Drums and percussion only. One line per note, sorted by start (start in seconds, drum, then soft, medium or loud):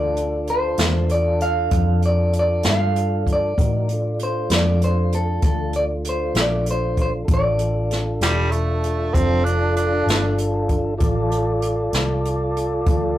0.17 closed hi-hat medium
0.47 closed hi-hat medium
0.78 snare loud
0.78 closed hi-hat medium
1.09 closed hi-hat medium
1.41 closed hi-hat medium
1.71 kick loud
1.71 closed hi-hat medium
2.02 closed hi-hat medium
2.33 closed hi-hat medium
2.63 snare medium
2.63 closed hi-hat medium
2.96 closed hi-hat medium
3.27 kick medium
3.27 closed hi-hat medium
3.58 kick loud
3.58 closed hi-hat medium
3.89 closed hi-hat medium
4.19 closed hi-hat medium
4.50 snare loud
4.50 closed hi-hat medium
4.82 closed hi-hat medium
5.12 closed hi-hat medium
5.42 kick medium
5.42 closed hi-hat medium
5.73 closed hi-hat medium
6.05 closed hi-hat medium
6.35 snare medium
6.35 closed hi-hat medium
6.66 closed hi-hat medium
6.97 kick medium
6.97 closed hi-hat medium
7.28 kick loud
7.28 closed hi-hat medium
7.59 closed hi-hat medium
7.91 snare soft
7.91 closed hi-hat medium
8.21 snare loud
8.21 closed hi-hat medium
8.52 closed hi-hat medium
8.84 closed hi-hat medium
9.14 kick loud
9.14 closed hi-hat medium
9.46 closed hi-hat medium
9.76 closed hi-hat medium
10.08 snare loud
10.08 closed hi-hat medium
10.38 closed hi-hat medium
10.69 kick medium
10.69 closed hi-hat medium
11.00 kick loud
11.00 closed hi-hat medium
11.31 closed hi-hat medium
11.62 closed hi-hat medium
11.93 snare loud
11.93 closed hi-hat medium
12.25 closed hi-hat medium
12.57 closed hi-hat medium
12.86 kick loud
12.86 closed hi-hat medium